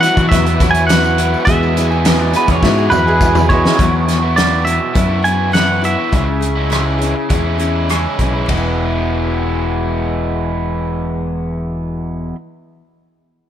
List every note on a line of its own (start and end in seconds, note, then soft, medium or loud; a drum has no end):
0.00 0.49 E2 medium
0.00 0.31 B2 medium
0.00 0.19 E3 medium
0.00 0.18 B3 medium
0.00 1.45 E4 medium
0.00 0.16 F#4 medium
0.00 1.45 F#4 medium
0.00 0.17 B4 medium
0.00 1.45 B4 medium
0.00 0.17 E5 medium
0.00 0.28 F#5 medium
0.00 closed hi-hat medium
0.04 0.33 F#3 soft
0.04 0.17 E4 medium
0.04 0.16 F#4 medium
0.04 tambourine medium
0.17 0.29 E3 medium
0.17 0.48 E3 medium
0.17 0.48 B3 medium
0.17 0.47 E4 medium
0.17 0.46 F#4 medium
0.17 kick medium
0.17 closed hi-hat soft
0.29 0.56 E2 loud
0.29 0.53 F#4 medium
0.29 0.53 B4 medium
0.29 0.70 E5 medium
0.29 kick loud
0.29 closed hi-hat loud
0.33 0.61 E2 medium
0.33 0.61 E3 medium
0.33 0.62 F#3 medium
0.33 0.62 B3 medium
0.33 0.62 E4 medium
0.33 0.62 F#4 medium
0.33 0.54 E5 medium
0.33 snare soft
0.33 tambourine soft
0.46 0.60 E3 medium
0.46 0.61 B3 medium
0.46 0.62 E4 medium
0.46 0.62 F#4 medium
0.46 closed hi-hat soft
0.60 1.34 E2 medium
0.60 0.77 E3 medium
0.60 0.77 B3 medium
0.60 0.76 E4 medium
0.60 0.82 F#4 medium
0.60 0.75 F#4 medium
0.60 0.82 B4 medium
0.60 0.82 C#5 medium
0.60 kick medium
0.60 closed hi-hat medium
0.60 tambourine medium
0.66 0.89 F#3 soft
0.71 0.86 G#5 loud
0.71 closed hi-hat medium
0.75 0.90 E3 medium
0.75 0.91 B3 medium
0.75 0.91 E4 medium
0.75 0.92 F#4 medium
0.75 tambourine soft
0.87 1.47 E2 loud
0.87 1.46 B2 loud
0.87 1.18 E3 loud
0.87 1.19 F#3 medium
0.87 1.32 F#4 medium
0.87 1.32 B4 medium
0.87 1.45 F#5 loud
0.87 snare loud
0.87 closed hi-hat medium
0.87 tambourine loud
0.91 1.20 B3 loud
0.91 1.20 E4 loud
0.91 1.21 F#4 loud
0.91 1.33 F#5 medium
1.04 tambourine medium
1.18 1.48 E3 medium
1.18 1.49 F#3 soft
1.18 1.49 B3 medium
1.18 1.49 E4 medium
1.18 1.50 F#4 medium
1.18 closed hi-hat medium
1.18 tambourine soft
1.34 tambourine soft
1.45 2.33 E2 loud
1.45 2.04 E2 medium
1.45 2.04 B2 medium
1.45 1.75 E3 medium
1.45 1.90 F#4 loud
1.45 1.90 G#4 medium
1.45 2.22 E5 medium
1.45 kick loud
1.45 closed hi-hat medium
1.45 tambourine soft
1.49 1.76 G#3 medium
1.49 1.76 B3 medium
1.49 3.78 E4 medium
1.49 1.77 E4 medium
1.49 3.78 F#4 medium
1.49 1.77 F#4 medium
1.49 3.78 G#4 medium
1.49 1.77 G#4 medium
1.49 1.91 E5 loud
1.63 tambourine soft
1.76 1.92 E3 medium
1.76 1.92 G#3 medium
1.76 1.91 B3 medium
1.76 2.06 E4 medium
1.76 2.06 F#4 medium
1.76 1.89 G#4 medium
1.76 closed hi-hat medium
1.76 tambourine medium
1.91 2.05 E3 soft
1.91 2.05 G#3 medium
1.91 2.06 B3 medium
1.91 2.06 G#4 medium
1.91 tambourine soft
2.05 2.63 E2 medium
2.05 2.63 B2 medium
2.05 2.32 E3 medium
2.05 2.33 G#3 loud
2.05 2.34 B3 medium
2.05 2.48 F#4 medium
2.05 2.35 F#4 medium
2.05 2.48 G#4 medium
2.05 2.35 G#4 loud
2.05 2.48 B4 medium
2.05 snare loud
2.05 closed hi-hat medium
2.05 tambourine medium
2.09 2.33 E4 medium
2.22 2.58 D5 medium
2.33 2.50 E3 medium
2.33 2.49 G#3 medium
2.33 2.48 B3 medium
2.33 2.63 E4 medium
2.33 2.64 F#4 medium
2.33 2.47 G#4 medium
2.33 2.48 B4 medium
2.33 closed hi-hat medium
2.33 tambourine medium
2.48 2.61 E2 medium
2.48 2.79 E3 medium
2.48 2.78 G#3 medium
2.48 2.78 B3 medium
2.48 2.76 G#4 medium
2.48 3.06 C#5 medium
2.48 kick medium
2.48 closed hi-hat soft
2.48 tambourine soft
2.62 2.92 E2 medium
2.62 2.87 G#2 medium
2.62 2.92 E3 medium
2.62 2.92 G#3 medium
2.62 2.93 B3 medium
2.62 2.91 E4 medium
2.62 2.84 F#4 medium
2.62 2.92 F#4 medium
2.62 2.84 G#4 medium
2.62 2.85 E5 loud
2.62 kick medium
2.62 snare medium
2.62 tambourine soft
2.78 2.91 E3 medium
2.78 2.92 G#3 medium
2.78 2.93 B3 medium
2.78 2.94 G#4 medium
2.78 tambourine soft
2.90 3.66 E2 medium
2.90 3.08 E3 medium
2.90 3.07 G#3 medium
2.90 3.06 B3 medium
2.90 3.13 F#4 medium
2.90 3.21 F#4 medium
2.90 3.13 G#4 medium
2.90 3.45 B4 medium
2.90 3.14 E5 medium
2.90 mid tom medium
2.90 tambourine medium
2.95 3.05 G#4 medium
3.07 3.21 E3 medium
3.07 3.21 G#3 medium
3.07 3.22 B3 medium
3.07 3.22 G#4 medium
3.07 3.49 G#4 medium
3.07 tambourine soft
3.20 3.77 E2 loud
3.20 3.77 B2 loud
3.20 3.48 E3 medium
3.20 3.49 G#3 loud
3.20 3.50 B3 loud
3.20 3.63 F#4 medium
3.20 3.64 G#4 medium
3.20 3.51 G#4 loud
3.20 3.64 E5 medium
3.20 kick medium
3.20 tambourine loud
3.24 3.50 E4 medium
3.24 3.51 F#4 medium
3.35 mid tom medium
3.35 tambourine medium
3.49 3.77 E3 medium
3.49 3.77 G#3 medium
3.49 3.78 B3 medium
3.49 3.78 E4 medium
3.49 3.79 E4 medium
3.49 3.80 F#4 medium
3.49 3.78 G#4 medium
3.49 4.33 C#5 medium
3.49 kick medium
3.49 tambourine soft
3.65 snare medium
3.65 tambourine soft
3.78 4.22 E2 medium
3.78 4.78 E2 medium
3.78 4.22 B2 medium
3.78 3.93 E3 medium
3.78 4.09 F#3 medium
3.78 3.92 B3 medium
3.78 3.92 E4 medium
3.78 3.91 F#4 medium
3.78 kick medium
3.78 closed hi-hat medium
3.92 muted overdriven electric guitar stroke soft
4.08 4.36 F#3 soft
4.08 4.37 B3 soft
4.08 4.37 E4 soft
4.08 4.37 F#4 soft
4.08 snare soft
4.08 closed hi-hat medium
4.22 4.36 E3 soft
4.22 4.36 B3 medium
4.22 4.38 E4 medium
4.22 4.37 F#4 medium
4.36 5.09 E2 medium
4.36 5.10 B2 medium
4.36 4.81 E3 medium
4.36 4.66 F#3 medium
4.36 4.80 B3 medium
4.36 4.80 E4 medium
4.36 4.79 F#4 medium
4.36 4.67 D5 medium
4.36 snare medium
4.36 closed hi-hat medium
4.65 4.94 F#3 soft
4.65 4.95 B3 soft
4.65 4.95 E4 medium
4.65 4.95 F#4 soft
4.65 5.24 E5 medium
4.65 closed hi-hat medium
4.80 muted overdriven electric guitar stroke soft
4.94 5.95 F#2 medium
4.94 5.12 E3 medium
4.94 5.24 F#3 medium
4.94 5.10 B3 medium
4.94 5.10 E4 medium
4.94 5.08 F#4 medium
4.94 kick loud
4.94 closed hi-hat medium
5.09 5.24 E3 medium
5.09 5.24 B3 medium
5.09 5.26 E4 medium
5.09 5.26 F#4 medium
5.24 5.55 E3 medium
5.24 5.52 F#3 soft
5.24 5.54 B3 medium
5.24 5.56 E4 medium
5.24 5.55 F#4 medium
5.24 5.52 G#5 medium
5.24 closed hi-hat medium
5.53 6.11 E2 medium
5.53 6.11 B2 medium
5.53 5.84 E3 loud
5.53 5.83 F#3 medium
5.53 5.84 B3 medium
5.53 5.85 E4 loud
5.53 5.85 F#4 loud
5.53 5.84 F#5 medium
5.53 snare medium
5.53 closed hi-hat medium
5.81 6.00 E3 medium
5.81 6.12 F#3 soft
5.81 5.99 B3 medium
5.81 6.12 E4 medium
5.81 7.86 E5 medium
5.81 closed hi-hat soft
5.86 5.99 E4 medium
5.86 5.98 F#4 medium
5.99 6.13 E3 soft
5.99 6.12 B3 medium
5.99 6.14 E4 medium
5.99 6.11 F#4 medium
6.12 7.13 C#2 medium
6.12 6.56 C#3 medium
6.12 6.28 E3 medium
6.12 6.28 G#3 medium
6.12 6.27 C#4 medium
6.12 6.27 E4 medium
6.12 6.39 G#4 medium
6.12 kick medium
6.12 closed hi-hat medium
6.28 muted overdriven electric guitar stroke soft
6.41 6.71 C#4 soft
6.41 6.71 E4 soft
6.41 6.71 G#4 soft
6.41 closed hi-hat medium
6.56 6.71 G#3 medium
6.56 6.71 C#4 medium
6.56 6.72 E4 medium
6.71 7.45 C#3 medium
6.71 7.15 E3 medium
6.71 7.15 G#3 medium
6.71 7.15 C#4 medium
6.71 7.15 E4 medium
6.71 6.97 G#4 loud
6.71 cross-stick loud
6.71 closed hi-hat medium
6.99 7.29 C#4 soft
6.99 7.30 E4 medium
6.99 7.29 G#4 medium
6.99 closed hi-hat medium
7.16 muted overdriven electric guitar stroke soft
7.29 8.06 E2 medium
7.29 7.58 E3 medium
7.29 7.46 G#3 medium
7.29 7.45 C#4 medium
7.29 7.43 E4 medium
7.29 7.57 G#4 medium
7.29 kick medium
7.29 closed hi-hat medium
7.44 7.59 G#3 medium
7.44 7.60 C#4 medium
7.44 7.61 E4 medium
7.58 7.88 E3 medium
7.58 7.89 G#3 medium
7.58 7.90 C#4 medium
7.58 7.90 E4 medium
7.58 7.88 G#4 medium
7.58 closed hi-hat medium
7.89 8.46 C#3 medium
7.89 8.18 E3 medium
7.89 8.19 G#3 medium
7.89 8.20 C#4 medium
7.89 8.20 E4 loud
7.89 8.18 G#4 medium
7.89 cross-stick medium
7.89 closed hi-hat medium
8.19 8.44 B1 medium
8.19 8.47 E3 medium
8.19 8.35 G#3 medium
8.19 8.34 C#4 medium
8.19 8.32 E4 medium
8.19 8.48 G#4 medium
8.19 kick medium
8.19 closed hi-hat soft
8.33 8.48 G#3 soft
8.33 8.47 C#4 medium
8.33 8.46 E4 medium
8.47 12.31 E1 medium
8.47 12.34 E2 medium
8.47 12.35 B2 medium
8.47 12.35 E3 medium
8.47 12.35 G#3 medium
8.47 12.36 B3 medium
8.47 kick soft
8.47 ride medium
8.51 12.38 B3 medium
8.51 12.36 E4 medium
8.57 12.39 E4 medium
8.57 12.41 G#4 medium